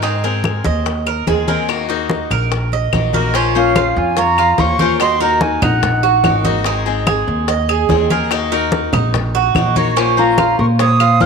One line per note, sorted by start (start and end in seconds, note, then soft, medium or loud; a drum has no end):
0.00 0.59 G#2 medium
0.00 0.22 D#3 medium
0.00 0.23 G#3 medium
0.00 0.23 C4 medium
0.00 0.23 D#4 medium
0.00 0.23 G#4 medium
0.00 high bongo medium
0.00 high conga soft
0.23 0.85 G#3 medium
0.23 0.85 C4 medium
0.23 0.85 G#4 medium
0.23 0.64 A#4 medium
0.23 high bongo soft
0.23 high conga soft
0.44 high bongo medium
0.44 high conga loud
0.44 claves medium
0.64 1.23 D#2 loud
0.64 1.05 D#5 medium
0.64 high bongo soft
0.64 high conga loud
0.86 muted steel-string acoustic guitar stroke medium
0.86 high bongo medium
0.86 high conga soft
1.06 1.27 A#4 medium
1.06 high bongo soft
1.06 high conga soft
1.06 claves medium
1.27 2.25 D#2 medium
1.27 1.47 D#3 medium
1.27 1.47 G#3 soft
1.27 1.47 C4 medium
1.27 1.48 G#4 medium
1.27 1.46 G#4 medium
1.27 high bongo soft
1.27 low bongo medium
1.27 high conga medium
1.48 1.69 G#3 medium
1.48 1.68 C4 medium
1.48 1.68 G#4 medium
1.48 1.88 A#4 medium
1.48 high conga medium
1.68 1.89 D#3 medium
1.68 1.89 A#3 medium
1.68 1.88 D#4 medium
1.68 1.87 F#4 medium
1.68 high bongo medium
1.68 high conga soft
1.68 claves medium
1.89 2.50 A#3 medium
1.89 2.51 D#4 medium
1.89 2.50 F#4 medium
1.89 2.30 D#5 medium
1.89 high bongo soft
1.89 high conga soft
2.09 high bongo medium
2.09 high conga loud
2.30 2.89 A#1 loud
2.30 2.71 A#4 medium
2.30 high bongo soft
2.30 high conga soft
2.30 claves medium
2.51 muted steel-string acoustic guitar stroke medium
2.51 high bongo medium
2.51 high conga soft
2.72 3.13 D#5 medium
2.72 high bongo soft
2.72 high conga soft
2.93 3.90 A#1 medium
2.93 3.13 D#3 soft
2.93 3.14 A#3 soft
2.93 3.13 D#4 medium
2.93 3.12 F#4 medium
2.93 high bongo soft
2.93 low bongo medium
2.93 high conga medium
2.93 claves medium
3.13 3.34 A#3 medium
3.13 3.34 D#4 medium
3.13 3.34 F#4 medium
3.13 3.34 A#4 medium
3.13 high conga medium
3.34 3.54 F3 medium
3.34 3.55 A#3 medium
3.34 3.75 C#4 medium
3.34 3.55 C#4 medium
3.34 3.54 F4 medium
3.34 3.54 C5 medium
3.34 high bongo medium
3.34 high conga soft
3.55 4.17 A#3 medium
3.55 3.94 C#4 medium
3.55 4.17 C#4 medium
3.55 4.17 F4 medium
3.55 4.16 C5 medium
3.55 3.99 F5 medium
3.55 high bongo soft
3.55 high conga soft
3.76 4.16 F4 medium
3.76 high bongo medium
3.76 high conga loud
3.76 claves medium
3.96 4.55 F2 loud
3.96 4.16 F4 medium
3.96 4.20 G#5 medium
3.96 high conga soft
4.17 4.59 F4 medium
4.17 4.37 C#5 medium
4.17 4.61 A#5 loud
4.17 muted steel-string acoustic guitar stroke medium
4.17 high bongo medium
4.17 high conga soft
4.37 4.78 F4 medium
4.37 high bongo soft
4.37 high conga soft
4.37 claves medium
4.58 5.56 D#2 medium
4.58 4.79 A#3 medium
4.58 4.79 C#4 medium
4.58 4.79 F4 medium
4.58 5.00 A#4 medium
4.58 4.79 C5 medium
4.58 5.00 C#6 loud
4.58 high bongo soft
4.58 low bongo medium
4.58 high conga loud
4.79 5.00 A#3 medium
4.79 5.01 C#4 medium
4.79 5.00 F4 medium
4.79 4.99 A#4 medium
4.79 5.00 C5 medium
4.79 high bongo soft
4.79 high conga medium
5.00 5.20 D#3 medium
5.00 5.21 A#3 medium
5.00 5.21 D#4 medium
5.00 5.19 F#4 medium
5.00 5.20 F#4 medium
5.00 5.20 D#5 medium
5.00 5.20 C6 loud
5.00 high bongo medium
5.00 high conga soft
5.00 claves medium
5.20 5.83 A#3 medium
5.20 5.83 D#4 medium
5.20 5.82 F#4 medium
5.20 5.42 F#4 medium
5.20 5.61 A#4 medium
5.20 5.43 A#5 medium
5.20 high bongo soft
5.20 high conga soft
5.41 5.62 D#4 medium
5.41 5.64 G#5 medium
5.41 high bongo medium
5.41 high conga loud
5.62 6.20 A#1 loud
5.62 6.02 D#4 medium
5.62 6.45 D#4 medium
5.62 6.45 F#5 medium
5.62 high conga soft
5.62 low conga loud
5.62 claves medium
5.83 muted steel-string acoustic guitar stroke medium
5.83 high bongo medium
5.83 high conga soft
5.83 low conga medium
6.03 6.43 F#4 medium
6.03 high bongo soft
6.03 high conga soft
6.24 7.22 G#1 medium
6.24 6.44 D#3 soft
6.24 6.45 A#3 medium
6.24 6.44 D#4 medium
6.24 6.44 F#4 medium
6.24 high bongo soft
6.24 low bongo medium
6.24 high conga loud
6.24 claves medium
6.44 6.65 A#3 medium
6.44 6.65 D#4 medium
6.44 6.65 F#4 medium
6.44 6.65 D#5 medium
6.44 high bongo soft
6.44 high conga medium
6.64 6.85 D#3 medium
6.64 6.86 G#3 medium
6.64 6.86 C4 medium
6.64 7.06 D#4 medium
6.64 6.85 G#4 medium
6.64 high bongo medium
6.64 high conga soft
6.86 7.48 G#3 medium
6.86 7.47 C4 medium
6.86 7.47 G#4 medium
6.86 high bongo soft
6.86 high conga soft
7.07 7.47 G#4 medium
7.07 high bongo medium
7.07 high conga loud
7.07 claves medium
7.27 7.86 D#2 loud
7.27 high conga soft
7.48 7.68 D#5 medium
7.48 muted steel-string acoustic guitar stroke medium
7.48 high bongo medium
7.48 high conga soft
7.69 8.09 G#4 medium
7.69 high bongo soft
7.69 high conga soft
7.69 claves medium
7.89 8.87 D#2 medium
7.89 8.10 D#3 medium
7.89 8.10 G#3 soft
7.89 8.10 C4 medium
7.89 8.10 G#4 medium
7.89 high bongo soft
7.89 low bongo medium
7.89 high conga medium
8.10 8.31 G#3 medium
8.10 8.31 C4 medium
8.10 8.31 G#4 medium
8.10 8.31 A#4 medium
8.10 high bongo soft
8.10 high conga medium
8.31 8.51 D#3 medium
8.31 8.51 A#3 medium
8.31 8.51 D#4 medium
8.31 8.51 F#4 medium
8.31 8.51 D#5 medium
8.31 high bongo medium
8.31 high conga soft
8.31 claves medium
8.51 9.14 A#3 medium
8.51 9.14 D#4 medium
8.51 9.13 F#4 medium
8.51 8.92 A#4 medium
8.51 high bongo soft
8.51 high conga soft
8.72 high bongo medium
8.72 high conga loud
8.93 9.51 A#1 loud
8.93 9.33 D#4 medium
8.93 high conga soft
8.93 low conga medium
8.93 claves medium
9.14 muted steel-string acoustic guitar stroke medium
9.14 high bongo medium
9.14 high conga soft
9.14 low conga medium
9.34 9.75 F#4 medium
9.34 high bongo soft
9.34 high conga soft
9.55 10.52 A#1 medium
9.55 9.76 D#3 medium
9.55 9.76 A#3 medium
9.55 9.75 D#4 medium
9.55 9.75 F#4 medium
9.55 high bongo soft
9.55 low bongo medium
9.55 high conga loud
9.55 claves medium
9.76 9.96 A#3 medium
9.76 9.96 D#4 medium
9.76 9.96 F#4 medium
9.76 9.96 C#5 medium
9.76 high bongo soft
9.76 high conga medium
9.97 10.17 F3 medium
9.97 10.17 A#3 medium
9.97 10.37 C#4 medium
9.97 10.17 C#4 medium
9.97 10.17 F4 medium
9.97 10.16 C5 medium
9.97 high bongo medium
9.97 high conga soft
10.17 10.80 A#3 medium
10.17 10.79 C#4 medium
10.17 10.79 F4 medium
10.17 10.57 F4 medium
10.17 10.79 C5 medium
10.17 10.56 A#5 medium
10.17 high bongo soft
10.17 high conga soft
10.38 10.78 F4 medium
10.38 high bongo medium
10.38 high conga loud
10.38 claves medium
10.59 11.17 A#2 loud
10.59 10.64 A#4 medium
10.59 10.66 C#6 medium
10.59 high conga soft
10.79 11.22 C5 medium
10.79 10.99 C#5 medium
10.79 11.23 D#6 loud
10.79 muted steel-string acoustic guitar stroke medium
10.79 high bongo medium
10.79 high conga soft
11.00 11.26 F4 medium
11.00 high bongo soft
11.00 high conga soft
11.00 claves medium
11.20 11.26 D#2 medium
11.20 11.26 A#3 soft
11.20 11.26 C#4 medium
11.20 11.26 F4 medium
11.20 11.26 C5 medium
11.20 11.26 C#5 medium
11.20 11.26 F6 loud
11.20 high bongo soft
11.20 low bongo medium
11.20 high conga medium